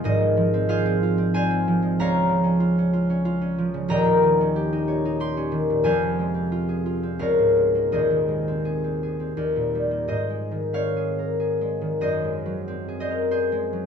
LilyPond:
<<
  \new Staff \with { instrumentName = "Harp" } { \time 3/4 \key f \minor \tempo 4 = 93 << { <ees'' f'' aes''>4 f''4 aes''4 | \key aes \major bes''2. | bes''2 c'''4 | aes''2 f''4 |
ees''2. | ees''4 f''2 | ees''4. ees''8 c''4 | } \\ { <aes' c''>4 <aes' c''>4 <c'' f''>4 | <des'' f''>2. | <ees'' g''>2. | <c'' f''>2 <bes' des''>4 |
<aes' c''>2 r4 | c''4 des''2 | c''4. c''8 aes'4 | } >> }
  \new Staff \with { instrumentName = "Harp" } { \clef bass \time 3/4 \key f \minor <aes,, aes, f aes c' f'>16 aes16 f16 c'16 f'16 c'16 f'16 c'16 f'16 c'16 f16 aes16 | \key aes \major des,16 des16 f16 des'16 f'16 des'16 f'16 des'16 f'16 des'16 f16 des16 | <ees,, ees,>16 bes,16 ees16 des'16 g'16 ees'16 des''16 ees'16 g'16 des'16 ees16 bes,16 | <f,, f,>16 c16 aes16 c'16 f'16 aes'16 f'16 c'16 des,16 aes,16 aes16 bes16 |
<ees,, ees,>16 ees16 aes16 c'16 aes'16 c'16 aes'16 c'16 ees,16 bes,16 g16 bes16 | \tuplet 3/2 { aes,8 aes8 ees8 c'8 aes'8 bes'8 aes'8 aes8 ees8 } | \tuplet 3/2 { ges,8 aes8 ges8 c'8 aes'8 bes'8~ bes'8 aes8 ges8 } | }
>>